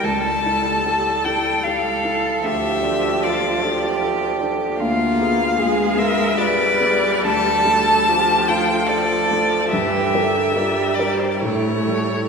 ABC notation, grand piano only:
X:1
M:3/4
L:1/8
Q:1/4=74
K:Dm
V:1 name="Grand piano"
^C,, [EA] [GA] [EA] [GA] [EA] | D,, [DA] [FA] [DA] [FA] [DA] | D,, [=B,_A] [FA] [B,A] [FA] [B,A] | D,, [A,A] [FA] [A,A] [FA] [A,A] |
G,, [G,B] [FB] [G,B] A,, [G,A] |]